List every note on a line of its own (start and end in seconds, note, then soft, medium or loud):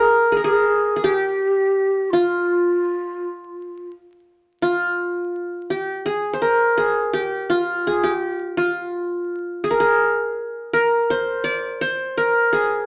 0.00 0.27 G#4 medium
0.00 0.32 G#4 medium
0.00 0.36 A#4 medium
0.31 0.44 G#4 medium
0.37 1.50 A#4 medium
0.44 0.96 G#4 medium
0.44 1.04 G#4 medium
0.96 1.10 G#4 medium
1.03 2.12 G4 medium
1.03 2.31 G4 medium
2.10 3.90 F4 medium
2.10 3.87 F4 medium
4.62 5.97 F4 medium
5.70 6.12 G4 medium
6.06 6.77 G#4 medium
6.33 7.39 C5 medium
6.42 7.55 A#4 medium
6.78 7.19 G#4 medium
7.13 7.93 G4 medium
7.50 8.57 F4 medium
7.87 8.10 G#4 medium
8.04 9.30 G4 medium
8.57 9.92 F4 medium
9.64 9.80 G#4 medium
9.71 10.73 A#4 medium
9.80 11.02 G#4 medium
10.73 11.87 A#4 medium
11.10 11.81 C5 medium
11.44 12.44 D5 medium
11.81 12.86 C5 medium
12.18 12.86 A#4 medium
12.53 12.86 G#4 medium